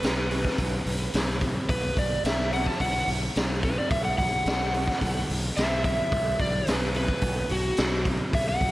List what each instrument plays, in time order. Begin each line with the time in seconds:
Already playing: electric slide guitar B4
0.03 fingered electric bass B1, snare, open hi-hat
0.31 open hi-hat
0.45 kick, snare
0.58 fingered electric bass B1, kick, open hi-hat
0.86 fingered electric bass B1, open hi-hat
1.13 fingered electric bass B1, snare, open hi-hat
1.41 kick, open hi-hat
1.69 fingered electric bass B1, electric slide guitar B4, kick, open hi-hat
1.97 fingered electric bass B1, electric slide guitar D5, kick, open hi-hat
2.24 fingered electric bass B1, electric slide guitar E5, snare, open hi-hat
2.52 electric slide guitar F#5, open hi-hat
2.66 electric slide guitar A5, kick, snare
2.80 fingered electric bass B1, electric slide guitar F#5, kick, open hi-hat
3.08 fingered electric bass B1, open hi-hat
3.35 fingered electric bass B1, snare, open hi-hat
3.63 electric slide guitar B4, kick, open hi-hat
3.78 electric slide guitar D5
3.91 fingered electric bass B1, electric slide guitar E5, kick, open hi-hat
4.05 electric slide guitar F#5
4.18 fingered electric bass B1, electric slide guitar F#5, kick, open hi-hat
4.46 fingered electric bass B1, snare, open hi-hat
4.74 open hi-hat
4.88 kick, snare
5.01 fingered electric bass B1, kick, open hi-hat
5.29 fingered electric bass B1, open hi-hat
5.57 fingered electric bass B1, electric slide guitar E5, snare, open hi-hat
5.84 electric slide guitar E5, kick, open hi-hat
6.12 fingered electric bass B1, kick, open hi-hat
6.39 fingered electric bass B1, electric slide guitar D5, kick, open hi-hat
6.67 fingered electric bass B1, electric slide guitar B4, snare, open hi-hat
6.94 electric slide guitar B4, open hi-hat
7.08 kick
7.21 fingered electric bass B1, kick, open hi-hat
7.49 fingered electric bass B1, electric slide guitar F#4, open hi-hat
7.77 fingered electric bass B1, snare, open hi-hat
8.05 kick, open hi-hat
8.33 fingered electric bass B1, electric slide guitar E5, kick, open hi-hat
8.49 electric slide guitar F#5
8.61 fingered electric bass B1, kick, open hi-hat